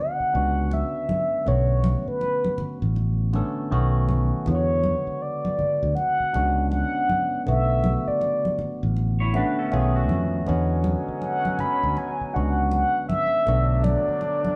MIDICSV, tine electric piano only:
0, 0, Header, 1, 2, 480
1, 0, Start_track
1, 0, Tempo, 750000
1, 938, Time_signature, 4, 2, 24, 8
1, 9317, End_track
2, 0, Start_track
2, 0, Title_t, "Tine electric piano"
2, 0, Program_c, 0, 4
2, 0, Control_c, 0, 64, 127
2, 0, Note_on_c, 0, 49, 62
2, 0, Note_on_c, 0, 50, 68
2, 0, Note_on_c, 0, 56, 65
2, 0, Note_on_c, 0, 59, 65
2, 0, Note_on_c, 0, 66, 73
2, 211, Note_on_c, 0, 62, 66
2, 214, Note_off_c, 0, 56, 0
2, 214, Note_on_c, 0, 56, 62
2, 219, Note_off_c, 0, 59, 0
2, 219, Note_on_c, 0, 59, 64
2, 224, Note_on_c, 0, 61, 61
2, 228, Note_off_c, 0, 66, 0
2, 228, Note_on_c, 0, 66, 72
2, 897, Note_off_c, 0, 62, 0
2, 898, Note_off_c, 0, 56, 0
2, 900, Note_off_c, 0, 59, 0
2, 903, Note_off_c, 0, 61, 0
2, 905, Note_off_c, 0, 66, 0
2, 929, Note_off_c, 0, 50, 0
2, 929, Note_on_c, 0, 50, 66
2, 933, Note_on_c, 0, 57, 65
2, 939, Note_on_c, 0, 59, 65
2, 942, Note_on_c, 0, 61, 60
2, 945, Control_c, 0, 64, 0
2, 946, Note_on_c, 0, 66, 77
2, 948, Note_off_c, 0, 49, 0
2, 1042, Control_c, 0, 64, 127
2, 1843, Note_off_c, 0, 50, 0
2, 1845, Note_off_c, 0, 57, 0
2, 1848, Note_off_c, 0, 59, 0
2, 1849, Note_off_c, 0, 61, 0
2, 1852, Note_off_c, 0, 66, 0
2, 2129, Note_on_c, 0, 50, 83
2, 2134, Note_on_c, 0, 57, 71
2, 2139, Note_on_c, 0, 59, 74
2, 2143, Note_on_c, 0, 61, 76
2, 2147, Note_on_c, 0, 69, 89
2, 2367, Note_off_c, 0, 57, 0
2, 2370, Note_on_c, 0, 51, 88
2, 2371, Note_off_c, 0, 59, 0
2, 2373, Note_off_c, 0, 50, 0
2, 2374, Note_off_c, 0, 61, 0
2, 2375, Note_on_c, 0, 57, 81
2, 2379, Note_on_c, 0, 59, 78
2, 2382, Note_off_c, 0, 69, 0
2, 2382, Note_on_c, 0, 61, 77
2, 2385, Control_c, 0, 64, 0
2, 2387, Note_on_c, 0, 66, 100
2, 2513, Control_c, 0, 64, 127
2, 2829, Note_off_c, 0, 51, 0
2, 2831, Note_off_c, 0, 57, 0
2, 2833, Note_off_c, 0, 59, 0
2, 2834, Note_off_c, 0, 61, 0
2, 2837, Note_off_c, 0, 66, 0
2, 2852, Note_on_c, 0, 50, 73
2, 2855, Note_on_c, 0, 56, 64
2, 2859, Note_on_c, 0, 59, 63
2, 2865, Note_on_c, 0, 49, 60
2, 2866, Control_c, 0, 64, 0
2, 2870, Note_on_c, 0, 65, 62
2, 2910, Note_on_c, 0, 66, 81
2, 2913, Note_off_c, 0, 65, 0
2, 2975, Control_c, 0, 64, 127
2, 3764, Note_off_c, 0, 50, 0
2, 3766, Note_off_c, 0, 56, 0
2, 3768, Note_off_c, 0, 59, 0
2, 3771, Note_off_c, 0, 49, 0
2, 3793, Note_off_c, 0, 66, 0
2, 4052, Note_on_c, 0, 62, 68
2, 4057, Note_on_c, 0, 56, 62
2, 4062, Note_on_c, 0, 59, 62
2, 4066, Note_on_c, 0, 61, 69
2, 4071, Note_on_c, 0, 66, 77
2, 4737, Note_off_c, 0, 62, 0
2, 4739, Note_off_c, 0, 56, 0
2, 4742, Note_off_c, 0, 59, 0
2, 4744, Note_off_c, 0, 61, 0
2, 4746, Note_off_c, 0, 66, 0
2, 4773, Note_on_c, 0, 50, 70
2, 4776, Note_on_c, 0, 57, 65
2, 4782, Note_on_c, 0, 59, 68
2, 4786, Note_on_c, 0, 49, 65
2, 4787, Control_c, 0, 64, 0
2, 4791, Note_on_c, 0, 66, 75
2, 4890, Control_c, 0, 64, 127
2, 5685, Note_off_c, 0, 50, 0
2, 5687, Note_off_c, 0, 57, 0
2, 5689, Note_off_c, 0, 59, 0
2, 5691, Note_off_c, 0, 49, 0
2, 5694, Note_off_c, 0, 66, 0
2, 5974, Note_on_c, 0, 50, 81
2, 5980, Note_on_c, 0, 57, 77
2, 5982, Note_on_c, 0, 59, 77
2, 5988, Note_on_c, 0, 61, 75
2, 5992, Note_on_c, 0, 66, 91
2, 6207, Note_off_c, 0, 57, 0
2, 6210, Note_on_c, 0, 51, 84
2, 6212, Note_off_c, 0, 59, 0
2, 6215, Note_on_c, 0, 57, 86
2, 6216, Note_off_c, 0, 50, 0
2, 6216, Note_off_c, 0, 61, 0
2, 6219, Note_on_c, 0, 59, 79
2, 6223, Note_on_c, 0, 61, 78
2, 6225, Note_off_c, 0, 66, 0
2, 6225, Control_c, 0, 64, 0
2, 6229, Note_on_c, 0, 65, 78
2, 6270, Note_on_c, 0, 66, 96
2, 6273, Note_off_c, 0, 65, 0
2, 6354, Control_c, 0, 64, 127
2, 6669, Note_off_c, 0, 51, 0
2, 6671, Note_off_c, 0, 57, 0
2, 6673, Note_off_c, 0, 59, 0
2, 6675, Note_off_c, 0, 61, 0
2, 6693, Note_on_c, 0, 50, 83
2, 6699, Note_off_c, 0, 66, 0
2, 6700, Note_on_c, 0, 56, 74
2, 6703, Note_on_c, 0, 59, 80
2, 6706, Control_c, 0, 64, 0
2, 6706, Note_on_c, 0, 61, 79
2, 6712, Note_on_c, 0, 66, 89
2, 6836, Control_c, 0, 64, 127
2, 7605, Note_off_c, 0, 50, 0
2, 7608, Note_off_c, 0, 56, 0
2, 7610, Note_off_c, 0, 59, 0
2, 7611, Note_off_c, 0, 61, 0
2, 7614, Note_off_c, 0, 66, 0
2, 7892, Note_on_c, 0, 62, 66
2, 7896, Note_on_c, 0, 56, 65
2, 7901, Note_on_c, 0, 59, 62
2, 7906, Note_on_c, 0, 61, 63
2, 7910, Note_on_c, 0, 66, 78
2, 8577, Note_off_c, 0, 62, 0
2, 8579, Note_off_c, 0, 56, 0
2, 8581, Note_off_c, 0, 59, 0
2, 8584, Note_off_c, 0, 61, 0
2, 8586, Note_off_c, 0, 66, 0
2, 8611, Note_on_c, 0, 50, 71
2, 8617, Note_on_c, 0, 57, 61
2, 8621, Note_on_c, 0, 59, 63
2, 8624, Note_on_c, 0, 62, 61
2, 8626, Control_c, 0, 64, 0
2, 8630, Note_on_c, 0, 66, 80
2, 8742, Control_c, 0, 64, 127
2, 9317, Note_off_c, 0, 50, 0
2, 9317, Note_off_c, 0, 57, 0
2, 9317, Note_off_c, 0, 59, 0
2, 9317, Note_off_c, 0, 62, 0
2, 9317, Note_off_c, 0, 66, 0
2, 9317, End_track
0, 0, End_of_file